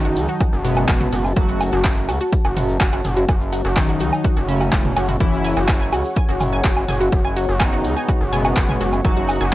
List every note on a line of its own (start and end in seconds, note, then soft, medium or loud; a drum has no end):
0.00 0.18 F#1 loud
0.00 0.55 D#3 medium
0.00 0.55 F#3 medium
0.00 0.55 D#4 loud
0.00 5.16 F#4 medium
0.00 9.54 C#5 medium
0.00 9.54 F#5 medium
0.00 5.16 A5 medium
0.04 0.10 F#4 medium
0.04 shaker soft
0.16 0.27 C#2 medium
0.16 open hi-hat loud
0.16 shaker medium
0.28 0.34 F#4 medium
0.28 shaker soft
0.40 0.46 F#4 medium
0.40 kick loud
0.40 low woodblock medium
0.40 shaker medium
0.53 0.86 F#1 loud
0.53 shaker soft
0.64 1.27 B2 loud
0.64 1.27 G#3 medium
0.64 1.27 B3 loud
0.64 0.70 F#4 medium
0.64 open hi-hat loud
0.64 shaker loud
0.77 0.82 F#4 medium
0.77 low woodblock medium
0.77 shaker soft
0.88 1.09 F#1 loud
0.88 kick loud
0.88 clap loud
0.88 shaker medium
1.01 1.06 F#4 medium
1.01 mid tom medium
1.12 1.33 F#1 medium
1.12 1.18 F#4 medium
1.12 open hi-hat loud
1.12 shaker loud
1.25 low woodblock medium
1.25 shaker soft
1.37 1.70 F#1 loud
1.37 2.23 F#3 loud
1.37 2.23 A3 medium
1.37 2.23 F#4 loud
1.37 1.42 F#4 medium
1.37 kick loud
1.37 shaker medium
1.49 1.54 F#4 medium
1.49 shaker soft
1.61 open hi-hat loud
1.61 low woodblock medium
1.61 shaker medium
1.72 2.10 F#1 loud
1.72 1.78 F#4 medium
1.72 shaker soft
1.84 1.90 F#4 medium
1.84 kick loud
1.84 clap loud
1.84 shaker medium
1.97 shaker soft
2.09 2.19 C#2 medium
2.09 2.14 F#4 medium
2.09 open hi-hat loud
2.09 low woodblock medium
2.09 shaker loud
2.20 2.26 F#4 medium
2.20 shaker soft
2.33 kick loud
2.33 shaker soft
2.45 2.78 F#1 loud
2.45 2.50 F#4 medium
2.45 low woodblock medium
2.45 shaker soft
2.56 2.62 F#4 medium
2.56 mid tom medium
2.56 open hi-hat loud
2.56 shaker medium
2.69 shaker soft
2.80 3.01 F#1 loud
2.80 2.86 F#4 medium
2.80 kick loud
2.80 clap loud
2.80 shaker medium
2.93 2.98 F#4 medium
2.93 low woodblock medium
3.04 3.25 F#1 medium
3.04 mid tom medium
3.04 open hi-hat loud
3.04 shaker medium
3.16 3.22 F#4 medium
3.16 shaker soft
3.29 3.62 F#1 loud
3.29 3.34 F#4 medium
3.29 kick loud
3.29 low woodblock medium
3.29 shaker medium
3.41 shaker soft
3.53 3.58 F#4 medium
3.53 open hi-hat loud
3.53 shaker medium
3.65 4.02 F#1 loud
3.65 3.70 F#4 medium
3.65 shaker soft
3.76 4.39 D#3 loud
3.76 4.39 F#3 medium
3.76 4.39 D#4 loud
3.76 kick loud
3.76 clap loud
3.76 low woodblock medium
3.76 shaker soft
3.88 3.94 F#4 medium
3.88 shaker soft
4.00 4.11 C#2 medium
4.00 4.06 F#4 medium
4.00 open hi-hat loud
4.00 shaker loud
4.13 low woodblock medium
4.13 shaker soft
4.24 4.30 F#4 medium
4.24 kick loud
4.24 shaker medium
4.37 4.70 F#1 loud
4.37 4.42 F#4 medium
4.37 shaker soft
4.48 5.11 C#3 medium
4.48 5.11 A3 medium
4.48 5.11 C#4 loud
4.48 open hi-hat loud
4.48 shaker medium
4.61 4.66 F#4 medium
4.61 low woodblock medium
4.61 shaker soft
4.72 4.93 E1 loud
4.72 4.78 F#4 medium
4.72 kick loud
4.72 clap loud
4.72 shaker medium
4.85 mid tom medium
4.96 5.17 F#1 medium
4.96 5.02 F#4 medium
4.96 open hi-hat loud
4.96 low woodblock medium
4.96 shaker loud
5.09 5.14 F#4 medium
5.09 mid tom medium
5.09 shaker soft
5.20 5.54 F#1 loud
5.20 6.07 E3 loud
5.20 6.07 C#4 medium
5.20 6.07 E4 loud
5.20 5.26 F#4 medium
5.20 9.54 G#4 medium
5.20 9.54 C#6 medium
5.20 kick loud
5.20 shaker medium
5.34 shaker soft
5.45 5.53 G#5 loud
5.45 open hi-hat loud
5.45 shaker medium
5.56 5.94 F#1 loud
5.56 5.62 F#4 medium
5.56 low woodblock medium
5.56 shaker soft
5.69 kick loud
5.69 clap loud
5.69 shaker medium
5.81 5.89 G#5 loud
5.81 shaker soft
5.92 6.03 C#2 medium
5.92 5.98 F#4 medium
5.92 open hi-hat loud
5.92 low woodblock medium
5.92 shaker loud
6.05 shaker soft
6.16 6.25 G#5 loud
6.16 kick loud
6.16 shaker soft
6.29 6.62 F#1 loud
6.29 6.34 F#4 medium
6.29 shaker soft
6.40 mid tom medium
6.40 open hi-hat loud
6.40 low woodblock medium
6.40 shaker medium
6.53 6.61 G#5 loud
6.53 shaker soft
6.64 6.85 F#1 loud
6.64 6.70 F#4 medium
6.64 kick loud
6.64 clap loud
6.64 shaker soft
6.77 low woodblock medium
6.88 7.09 F#1 medium
6.88 6.97 G#5 loud
6.88 mid tom medium
6.88 open hi-hat loud
6.88 shaker medium
7.01 7.06 F#4 medium
7.01 shaker soft
7.12 7.46 F#1 loud
7.12 kick loud
7.12 shaker medium
7.25 7.33 G#5 loud
7.25 low woodblock medium
7.25 shaker soft
7.36 7.42 F#4 medium
7.36 open hi-hat loud
7.36 shaker medium
7.49 7.86 F#1 loud
7.49 shaker soft
7.60 8.23 D#3 medium
7.60 8.23 B3 medium
7.60 8.23 D#4 loud
7.60 7.69 G#5 loud
7.60 kick loud
7.60 clap loud
7.60 low woodblock medium
7.60 shaker soft
7.73 7.78 F#4 medium
7.73 shaker soft
7.84 7.95 C#2 medium
7.84 open hi-hat loud
7.84 shaker medium
7.97 8.05 G#5 loud
7.97 shaker soft
8.09 8.14 F#4 medium
8.09 kick loud
8.09 low woodblock medium
8.09 shaker soft
8.21 8.54 F#1 loud
8.21 shaker soft
8.32 8.95 B2 medium
8.32 8.95 G#3 medium
8.32 8.95 B3 loud
8.32 8.41 G#5 loud
8.32 open hi-hat loud
8.32 shaker medium
8.45 8.50 F#4 medium
8.45 low woodblock medium
8.45 shaker soft
8.56 8.77 F#1 loud
8.56 kick loud
8.56 clap loud
8.56 shaker soft
8.69 8.77 G#5 loud
8.69 mid tom loud
8.80 9.01 F#1 medium
8.80 8.86 F#4 medium
8.80 open hi-hat loud
8.80 shaker medium
8.92 low woodblock medium
8.92 shaker soft
9.04 9.38 F#1 loud
9.04 9.54 F#3 loud
9.04 9.54 D#4 medium
9.04 9.54 F#4 loud
9.04 9.13 G#5 loud
9.04 kick loud
9.04 shaker soft
9.17 9.22 F#4 medium
9.17 shaker soft
9.29 open hi-hat loud
9.29 low woodblock medium
9.29 shaker medium
9.41 9.54 F#1 loud
9.41 9.49 G#5 loud
9.41 shaker soft